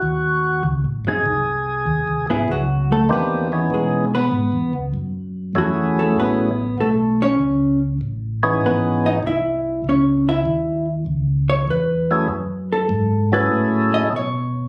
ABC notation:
X:1
M:4/4
L:1/8
Q:"Swing" 1/4=98
K:C#m
V:1 name="Hollow-body jazz guitar"
z3 [F,^B,D] z3 [=B,EG] | [F,F] [A,A] [B,B]2 [G,G] [B,B]2 z | z2 [F,F] [A,A] [B,B]2 [A,A] [Cc]- | [Cc] z3 [B,B] [Dd] [Ee]2 |
[Cc] [Ee]2 z2 c B2- | B A2 B z d c2 |]
V:2 name="Tonewheel organ"
F2 z G4 z | z2 [D,^A,^B,=D=G] [E,=B,C^D^G]2 z3 | z2 [F,A,CEG]3 z3 | z3 [E,B,CDG]3 z2 |
z6 z [F,A,CEG] | z3 [F,CEGA]3 z2 |]
V:3 name="Tonewheel organ" clef=bass
D,,2 (3C,, A,,, F,,, ^B,,,2 (3D,, B,,, G,,, | C,,2 E,,2 B,,2 (3G,, E,, C,, | F,,2 E,,2 A,,,2 B,,,2 | C,,2 A,,,2 G,,,2 ^B,,,2 |
C,,2 D,,2 C,,2 E,,2 | F,,2 G,,2 A,, A,, B,,2 |]